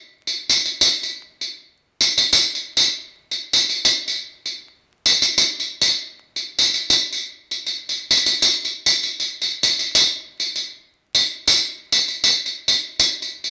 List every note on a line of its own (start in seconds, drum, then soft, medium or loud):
0.27 tambourine soft
0.50 tambourine medium
0.65 tambourine soft
0.81 tambourine medium
1.03 tambourine soft
1.41 tambourine soft
2.01 tambourine medium
2.18 tambourine medium
2.33 tambourine medium
2.55 tambourine soft
2.77 tambourine medium
3.31 tambourine soft
3.53 tambourine medium
3.69 tambourine soft
3.85 tambourine medium
4.08 tambourine soft
4.46 tambourine soft
5.06 tambourine medium
5.22 tambourine medium
5.38 tambourine medium
5.60 tambourine soft
5.81 tambourine medium
6.36 tambourine soft
6.58 tambourine medium
6.74 tambourine soft
6.90 tambourine medium
7.13 tambourine soft
7.51 tambourine soft
7.66 tambourine soft
7.89 tambourine soft
8.11 tambourine medium
8.26 tambourine medium
8.42 tambourine medium
8.65 tambourine soft
8.86 tambourine medium
9.03 tambourine soft
9.20 tambourine soft
9.42 tambourine soft
9.63 tambourine medium
9.79 tambourine soft
9.95 tambourine medium
10.40 tambourine soft
10.56 tambourine soft
11.15 tambourine medium
11.47 tambourine medium
11.92 tambourine medium
12.08 tambourine soft
12.24 tambourine medium
12.46 tambourine soft
12.68 tambourine medium
13.00 tambourine medium
13.22 tambourine soft
13.44 tambourine soft